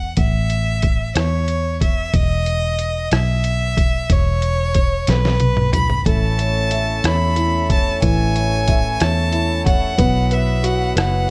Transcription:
Already playing: fingered electric bass E2, violin F#5
0.17 fingered electric bass A1, violin E5, kick, closed hi-hat
0.50 closed hi-hat
0.82 kick, closed hi-hat
1.16 fingered electric bass E2, violin C#5, cross-stick, closed hi-hat
1.48 closed hi-hat
1.81 violin E5, kick, closed hi-hat
2.14 fingered electric bass E1, violin D#5, kick, closed hi-hat
2.46 closed hi-hat
2.79 closed hi-hat
3.12 fingered electric bass B1, violin E5, cross-stick, closed hi-hat
3.44 closed hi-hat
3.77 kick, closed hi-hat
4.10 fingered electric bass E1, violin C#5, kick, closed hi-hat
4.42 closed hi-hat
4.74 kick, closed hi-hat
5.07 fingered electric bass B1, violin B4, snare, closed hi-hat
5.25 snare
5.40 closed hi-hat, high tom
5.57 mid tom
5.73 violin B5, closed hi-hat, mid tom
5.90 floor tom
6.06 fingered electric bass A1, grand piano A3, tonewheel organ A3 C#4 E4, violin A5, kick, closed hi-hat
6.38 grand piano C#5, closed hi-hat
6.71 grand piano E5, closed hi-hat
7.04 fingered electric bass E2, grand piano C#5, violin B5, cross-stick, closed hi-hat
7.36 grand piano E4, closed hi-hat
7.69 grand piano C#5, violin A5, kick, closed hi-hat
8.02 fingered electric bass A1, grand piano E3, violin G#5, kick, closed hi-hat
8.36 grand piano C#5, closed hi-hat
8.68 grand piano E5, kick, closed hi-hat
9.00 fingered electric bass E2, grand piano C#5, violin A5, cross-stick, closed hi-hat
9.32 grand piano E4, closed hi-hat
9.66 grand piano C#5, violin F#5, kick, closed hi-hat
9.98 fingered electric bass B1, tonewheel organ F#3 B3, grand piano B3, kick, closed hi-hat
10.31 grand piano B4, violin E5, closed hi-hat
10.63 grand piano F#4, violin F#5, closed hi-hat
10.96 fingered electric bass F#1, grand piano B4, violin F#5, cross-stick, closed hi-hat

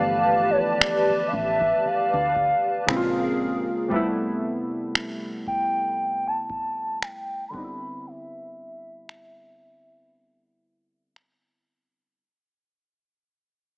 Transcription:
Already playing: fingered electric bass G1, synth keys D3 E3 F3 A3 B3, analog synth pad G4 B4 D5 A5, soft synth lead F5
0.51 soft synth lead C#5
0.59 soft synth lead D5
0.81 finger snap
1.10 muted fingered electric bass stroke
1.28 soft synth lead F5
1.33 fingered electric bass A1, analog synth pad D5, soft synth lead E5, kick
1.61 kick
1.85 soft synth lead F5, muted fingered electric bass stroke
2.13 fingered electric bass D2
2.36 kick
2.86 fingered electric bass A#1, synth keys C#3 G#3 A#3 C4 E4, analog synth pad G#4 A#4 F5, finger snap
2.97 synth keys F4
3.88 synth keys C3 G3 A3, kick
3.94 synth keys B3 E4
4.95 finger snap
5.47 soft synth lead G5, kick
6.28 soft synth lead A5
6.50 soft synth lead A5, kick
7.02 soft synth lead G5, finger snap
7.48 synth keys D3, soft synth lead C6
7.52 synth keys G3 B3 C4, soft synth lead B5, kick
7.58 synth keys D#4
7.64 synth keys E4
8.07 soft synth lead E5
9.09 finger snap
11.16 finger snap

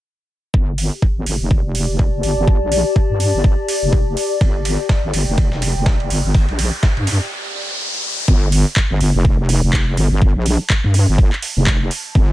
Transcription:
0.54 wobble bass G1, ambient pad G4, kick
0.78 open hi-hat
1.02 kick
1.16 wobble bass G1
1.23 wobble bass G1, ambient pad D5, open hi-hat
1.41 wobble bass F1
1.48 ambient pad A5, kick
1.75 open hi-hat
1.89 wobble bass F1
1.99 kick
2.23 wobble bass G1, open hi-hat
2.37 wobble bass G1
2.48 kick
2.62 wobble bass A#1
2.72 open hi-hat
2.96 kick
3.10 wobble bass G2
3.20 open hi-hat
3.34 wobble bass G1
3.44 kick
3.68 open hi-hat
3.83 wobble bass F1
3.93 kick
4.17 open hi-hat
4.40 wobble bass G1, ambient pad G5, kick, ride, riser
4.65 open hi-hat, ride
4.89 kick, snare, ride
5.03 wobble bass G1
5.13 wobble bass G1, open hi-hat, ride
5.28 wobble bass F1
5.38 kick, ride
5.52 snare
5.62 open hi-hat, ride
5.76 wobble bass F1
5.86 kick, snare, ride
6.00 ride
6.10 wobble bass G1, open hi-hat
6.25 wobble bass G1
6.34 kick, open hi-hat
6.49 wobble bass A#1, ride
6.59 open hi-hat, ride
6.83 kick, snare, ride
6.97 wobble bass G2, ride
7.07 snare, open hi-hat, ride
8.28 wobble bass G1, kick
8.52 open hi-hat
8.76 kick, clap
8.91 wobble bass G1
9.01 wobble bass G1, open hi-hat
9.15 wobble bass F1
9.25 kick
9.49 open hi-hat
9.63 wobble bass F1
9.73 ambient pad A5, kick, clap
9.97 wobble bass G1, open hi-hat
10.12 wobble bass G1
10.22 kick
10.36 wobble bass A#1
10.46 open hi-hat
10.70 kick, clap
10.84 wobble bass G2
10.94 open hi-hat
11.08 wobble bass G1
11.18 kick
11.33 clap
11.42 open hi-hat
11.57 wobble bass F1
11.67 kick, clap
11.91 open hi-hat
12.15 wobble bass G1, kick

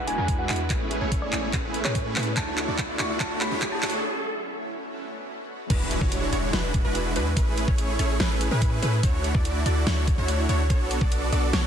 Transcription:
Already playing: 808-style bass E1, ambient pad D3 G#3 B3 E4 F#4, supersaw synth G#3 D4 E4 F#4 B4, riser
0.07 synth pluck G#5, closed hi-hat
0.18 808-style bass E2, supersaw synth G#3 D4 E4 F#4 B4
0.28 kick, closed hi-hat
0.39 synth pluck F#5
0.49 808-style bass E2, supersaw synth G#3 D4 E4 F#4 B4, clap, closed hi-hat
0.53 closed hi-hat
0.56 closed hi-hat
0.70 808-style bass A1, ambient pad C#3 A3, supersaw synth A3 C#4 E4 G#4 B4, kick, clap, closed hi-hat
0.91 closed hi-hat
1.01 808-style bass A1, supersaw synth A3 C#4 E4 G#4 C#5
1.12 kick, closed hi-hat
1.22 synth pluck D5
1.32 808-style bass A1, supersaw synth A3 C#4 E4 G#4 C#5, clap, closed hi-hat
1.53 808-style bass A1, supersaw synth A3 C#4 E4 G#4 B4, kick, clap, closed hi-hat
1.74 closed hi-hat
1.84 808-style bass A2, supersaw synth A3 C#4 E4 G#4 B4, synth pluck C#5, clap
1.95 kick, closed hi-hat
2.16 808-style bass A2, supersaw synth A3 C#4 E4 G#4 B4, clap, closed hi-hat
2.19 closed hi-hat
2.23 closed hi-hat
2.37 808-style bass D2, ambient pad D3 F#3 A3 C#4 E4, supersaw synth A3 D4 E4 F#4 C#5, synth pluck A5, kick, clap, closed hi-hat
2.58 clap, closed hi-hat
2.68 808-style bass D2, supersaw synth A3 D4 E4 F#4 D5
2.78 kick, clap, closed hi-hat
2.99 808-style bass D2, supersaw synth A3 D4 E4 F#4 D5, synth pluck C#6, clap, closed hi-hat
3.20 808-style bass D2, supersaw synth A3 D4 E4 F#4 C#5, synth pluck A5, kick, clap, closed hi-hat
3.41 synth pluck B5, clap, closed hi-hat
3.51 808-style bass D2, supersaw synth A3 D4 E4 F#4 C#5
3.62 kick, clap, closed hi-hat
3.72 synth pluck A5
3.83 808-style bass D2, supersaw synth A3 D4 E4 F#4 C#5, clap, closed hi-hat
3.86 closed hi-hat
3.90 closed hi-hat
4.04 ambient pad D3 A3 B3 F#4
5.70 808-style bass E1, supersaw synth G#3 D4 E4 F#4 B4, synth pluck B4, kick, closed hi-hat, crash, impact
5.91 closed hi-hat
6.01 808-style bass E1, supersaw synth G#3 D4 E4 F#4 C#5, synth pluck C#5, kick
6.12 closed hi-hat
6.32 808-style bass E1, supersaw synth G#3 D4 E4 F#4 C#5, synth pluck C#5, closed hi-hat
6.53 808-style bass E1, supersaw synth G#3 D4 E4 F#4 B4, synth pluck B4, snare, closed hi-hat
6.74 kick, closed hi-hat
6.85 808-style bass E1, supersaw synth G#3 D4 E4 F#4 B4, synth pluck B4
6.95 closed hi-hat
7.16 808-style bass E2, supersaw synth G#3 D4 E4 F#4 B4, synth pluck B4, closed hi-hat
7.37 808-style bass A1, supersaw synth A3 C#4 E4 G#4 B4, synth pluck B4, kick, closed hi-hat
7.57 closed hi-hat
7.68 808-style bass A1, supersaw synth A3 C#4 E4 G#4 C#5, synth pluck C#5, kick
7.78 closed hi-hat
7.99 808-style bass A1, supersaw synth A3 C#4 E4 G#4 C#5, synth pluck C#5, closed hi-hat
8.20 808-style bass A1, supersaw synth A3 C#4 E4 G#4 B4, synth pluck B4, snare, closed hi-hat
8.41 closed hi-hat
8.51 808-style bass A2, supersaw synth A3 C#4 E4 G#4 B4, synth pluck B4
8.62 kick, closed hi-hat
8.82 808-style bass A2, supersaw synth A3 C#4 E4 G#4 B4, synth pluck B4, closed hi-hat
9.03 808-style bass D2, supersaw synth A3 D4 E4 F#4 C#5, synth pluck C#5, kick, closed hi-hat
9.24 closed hi-hat
9.35 808-style bass D2, supersaw synth A3 D4 E4 F#4 D5, synth pluck D5, kick
9.45 closed hi-hat
9.66 808-style bass D2, supersaw synth A3 D4 E4 F#4 D5, synth pluck D5, closed hi-hat
9.87 808-style bass D2, supersaw synth A3 D4 E4 F#4 C#5, synth pluck C#5, snare, closed hi-hat
10.07 kick, closed hi-hat
10.18 808-style bass D2, supersaw synth A3 D4 E4 F#4 C#5, synth pluck C#5
10.28 closed hi-hat
10.49 808-style bass D2, supersaw synth A3 D4 E4 F#4 C#5, synth pluck C#5, closed hi-hat
10.70 808-style bass B1, supersaw synth B3 D4 F#4 A4 C#5, synth pluck C#5, kick, closed hi-hat
10.91 closed hi-hat
11.01 808-style bass B1, supersaw synth B3 F#4, synth pluck D5, kick
11.12 closed hi-hat
11.32 808-style bass B1, supersaw synth B3 D4 F#4 A4 D5, synth pluck D5, closed hi-hat
11.53 808-style bass B1, supersaw synth B3 D4 F#4 A4 C#5, synth pluck C#5, snare, closed hi-hat

